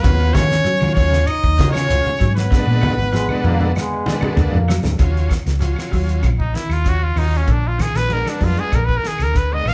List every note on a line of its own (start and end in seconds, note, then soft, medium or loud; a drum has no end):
0.01 0.31 D#2 loud
0.01 0.30 C#3 loud
0.01 0.46 F#3 medium
0.01 0.37 B3 medium
0.01 0.46 C#4 medium
0.01 0.47 F4 medium
0.01 0.35 B4 loud
0.01 kick loud
0.01 closed hi-hat medium
0.01 low conga medium
0.01 shekere medium
0.20 closed hi-hat soft
0.33 0.61 D#3 medium
0.33 0.62 D#3 loud
0.33 0.96 C#4 medium
0.33 0.94 C#5 loud
0.33 kick medium
0.33 snare medium
0.33 closed hi-hat medium
0.33 high conga loud
0.33 low conga medium
0.33 claves medium
0.33 shekere soft
0.51 snare medium
0.51 closed hi-hat soft
0.64 0.92 F#3 medium
0.64 closed hi-hat medium
0.64 shekere medium
0.81 0.95 D#3 loud
0.81 1.23 F#3 medium
0.81 1.24 C#4 medium
0.81 1.25 F4 medium
0.81 closed hi-hat soft
0.81 high conga loud
0.81 claves medium
0.95 1.24 D#2 medium
0.95 1.10 D#3 medium
0.95 1.30 C#4 medium
0.95 1.28 C#5 loud
0.95 kick medium
0.95 open hi-hat medium
0.95 shekere soft
1.11 1.38 C#3 medium
1.11 snare medium
1.27 1.75 D#4 loud
1.27 1.71 D#5 loud
1.27 closed hi-hat medium
1.27 claves medium
1.27 shekere medium
1.43 1.57 D#2 loud
1.43 kick medium
1.43 closed hi-hat soft
1.58 1.86 C#3 medium
1.58 1.85 D#3 medium
1.58 2.10 F#3 medium
1.58 2.10 C#4 medium
1.58 2.11 F4 medium
1.58 kick medium
1.58 snare medium
1.58 closed hi-hat medium
1.58 high conga loud
1.58 shekere soft
1.72 2.32 C#4 medium
1.72 2.31 C#5 loud
1.72 closed hi-hat soft
1.72 claves medium
1.76 snare medium
1.89 2.03 C#2 medium
1.89 2.16 C#3 medium
1.89 closed hi-hat medium
1.89 high conga medium
1.89 shekere medium
2.05 muted fingered electric bass stroke soft
2.05 closed hi-hat soft
2.05 high conga medium
2.19 2.48 G#2 medium
2.19 2.47 F#3 medium
2.19 kick medium
2.19 snare soft
2.19 closed hi-hat medium
2.19 claves medium
2.19 shekere soft
2.35 4.34 B3 medium
2.35 4.33 B4 loud
2.35 snare medium
2.35 closed hi-hat soft
2.51 2.78 D3 loud
2.51 2.94 G#3 medium
2.51 2.94 B3 medium
2.51 2.95 D4 loud
2.51 muted fingered electric bass stroke soft
2.51 kick loud
2.51 snare medium
2.51 low conga medium
2.51 shekere medium
2.67 2.80 A#2 medium
2.81 3.09 D#3 medium
2.81 high tom medium
2.81 high conga loud
2.81 low conga medium
2.81 claves medium
2.81 shekere soft
2.97 3.25 G#1 medium
2.97 high tom medium
3.13 3.40 F3 medium
3.13 3.27 G#3 medium
3.13 snare medium
3.13 shekere medium
3.29 3.72 G#3 loud
3.29 3.72 B3 medium
3.29 3.72 D4 loud
3.29 high conga medium
3.29 claves medium
3.43 3.71 F2 loud
3.43 3.58 D#3 medium
3.43 3.59 A#3 loud
3.43 mid tom medium
3.43 shekere soft
3.60 3.87 D3 medium
3.60 3.68 A#3 loud
3.60 mid tom medium
3.74 4.33 G#3 loud
3.74 snare medium
3.74 claves medium
3.74 shekere medium
4.06 4.34 D#3 medium
4.06 4.58 G#3 medium
4.06 4.58 B3 medium
4.06 4.58 D4 loud
4.06 snare medium
4.06 high conga loud
4.06 shekere soft
4.21 muted fingered electric bass stroke soft
4.21 mid tom medium
4.21 high conga loud
4.21 claves medium
4.36 4.51 D2 loud
4.36 4.64 D3 medium
4.36 4.99 A#3 medium
4.36 floor tom loud
4.36 shekere medium
4.51 4.80 F2 medium
4.51 low conga medium
4.68 4.95 F#3 medium
4.68 snare medium
4.68 claves medium
4.68 shekere soft
4.83 4.97 D2 medium
4.83 snare medium
4.83 low conga medium
4.98 5.27 D#2 loud
4.98 5.26 C#3 medium
4.98 5.33 F#3 loud
4.98 5.33 C#4 medium
4.98 5.34 F4 loud
4.98 kick medium
4.98 snare soft
4.98 closed hi-hat medium
4.98 shekere medium
5.16 snare soft
5.29 muted clean electric guitar stroke medium
5.29 kick medium
5.29 snare medium
5.29 closed hi-hat medium
5.29 claves medium
5.29 shekere soft
5.46 5.74 C#2 medium
5.46 snare medium
5.46 closed hi-hat medium
5.59 5.88 F3 medium
5.59 6.29 F#3 medium
5.59 6.30 C#4 medium
5.59 6.30 F4 medium
5.59 snare soft
5.59 closed hi-hat medium
5.59 shekere medium
5.76 snare medium
5.76 claves medium
5.92 6.21 D#2 medium
5.92 6.19 F#3 medium
5.92 kick medium
5.92 open hi-hat medium
5.92 shekere soft
6.09 closed hi-hat soft
6.23 6.52 A#1 loud
6.23 6.50 C#3 medium
6.23 kick medium
6.23 closed hi-hat medium
6.23 claves medium
6.23 shekere medium
6.39 6.57 D#4 medium
6.39 kick medium
6.54 6.82 D#3 medium
6.54 6.74 E4 medium
6.54 snare medium
6.54 closed hi-hat medium
6.54 shekere soft
6.69 7.11 D#2 medium
6.69 6.91 F4 medium
6.69 snare soft
6.69 closed hi-hat soft
6.69 claves medium
6.85 7.12 C#3 medium
6.85 7.03 F#3 medium
6.85 7.03 C#4 medium
6.85 7.04 F4 medium
6.85 kick medium
6.85 snare soft
6.85 closed hi-hat medium
6.85 shekere medium
6.89 7.05 F#4 medium
7.04 7.20 F4 medium
7.16 7.44 D#2 medium
7.16 7.44 D#3 medium
7.16 7.48 F#3 medium
7.16 7.49 C#4 medium
7.16 7.38 D#4 medium
7.16 7.49 F4 medium
7.16 open hi-hat medium
7.16 claves medium
7.16 shekere soft
7.34 7.53 C#4 medium
7.34 snare soft
7.47 7.90 A#1 loud
7.47 7.75 D3 medium
7.47 kick medium
7.47 closed hi-hat medium
7.47 shekere medium
7.52 7.69 D4 medium
7.68 7.83 F4 medium
7.78 8.06 D#3 medium
7.78 7.98 G#4 medium
7.78 kick medium
7.78 snare medium
7.78 closed hi-hat medium
7.78 claves medium
7.78 shekere soft
7.94 8.22 A#1 medium
7.94 8.14 B4 loud
7.94 snare medium
7.94 closed hi-hat medium
8.09 8.37 F3 medium
8.09 8.79 G#3 medium
8.09 8.79 B3 medium
8.09 8.80 D4 medium
8.09 closed hi-hat medium
8.09 shekere medium
8.13 8.31 A#4 medium
8.25 snare medium
8.25 claves medium
8.30 8.46 D4 medium
8.40 8.56 F2 medium
8.40 8.68 F#3 medium
8.40 8.61 F4 medium
8.40 kick medium
8.40 open hi-hat medium
8.40 shekere soft
8.57 8.77 G#4 medium
8.57 closed hi-hat soft
8.72 9.01 A#1 loud
8.72 8.99 D3 medium
8.72 8.86 A#4 medium
8.72 kick medium
8.72 closed hi-hat medium
8.72 claves medium
8.72 shekere medium
8.85 8.99 B4 medium
8.85 kick medium
8.97 9.09 A#4 medium
9.02 9.31 D#3 medium
9.02 muted fingered electric bass stroke soft
9.02 snare medium
9.02 closed hi-hat soft
9.02 shekere soft
9.07 9.24 G#4 medium
9.18 9.61 D2 medium
9.18 snare soft
9.18 closed hi-hat soft
9.18 claves medium
9.23 9.38 A#4 medium
9.34 9.62 D3 medium
9.34 9.55 B4 medium
9.34 kick medium
9.34 snare soft
9.34 closed hi-hat medium
9.34 shekere medium
9.51 9.74 G#3 medium
9.51 9.74 B3 medium
9.51 9.74 D4 medium
9.51 9.70 D#5 medium
9.65 9.74 A#1 medium
9.65 9.74 D#3 medium
9.65 9.74 F5 loud
9.65 snare soft
9.65 open hi-hat medium
9.65 claves medium
9.65 shekere soft